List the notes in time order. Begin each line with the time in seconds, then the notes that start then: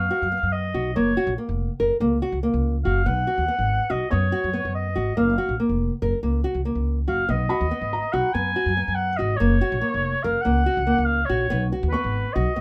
Already playing: F5 C#6 D#6 F6
0.11 F#4
0.22 F#2
0.32 B3
0.43 F#2
0.52 D#5
0.74 B1 F#4
0.96 F#1 A#3 C#5
1.17 F#4
1.27 A#1
1.38 A#3
1.49 F1
1.80 F#1 A#4
2.00 C#2 A#3
2.22 F#4
2.32 C#2
2.43 A#3
2.54 C#2
2.84 F#1 F#4 F5
3.06 B1 B3 F#5
3.27 F#4
3.38 D#2
3.48 B3
3.59 G#1
3.90 B1 F#4 D#5
4.11 F#2 B3 C#5 D#6
4.32 F#4
4.44 F#2
4.53 B3
4.65 F#2
4.75 D#5
4.96 G#1 F#4
5.17 F#1 A#3 F5
5.38 F#4
5.49 A#1
5.60 A#3
5.69 F1
6.02 F#1 A#4
6.23 C#2 A#3
6.44 F#4
6.54 C#2
6.65 A#3
6.75 C#2
7.07 F#1 F#4 F5
7.29 B1 B3 D#5
7.49 F#4 B5
7.61 D#2
7.71 B3
7.81 G#1
7.93 A#5
8.12 B1 F#4 F#5
8.34 F#2 B3 G#5
8.56 F#4
8.66 F#2
8.77 B3
8.88 F#2
8.95 F#5
9.17 G#1 F#4 D#5
9.36 A#3 C#5
9.41 F#1
9.61 F#4
9.72 A#1
9.81 A#3
9.94 F1
10.23 F#1 A#4 F5
10.41 A#3 F#5
10.46 C#2
10.66 F#4
10.77 C#2
10.87 A#3
10.98 C#2
11.05 F5
11.25 C#5
11.29 A#1 F#4
11.50 B1 B3
11.72 F#4
11.83 D#2
11.89 B4 C#6
11.94 B3
12.04 G#1
12.33 B1 F#4 D#5
12.56 F#2 B3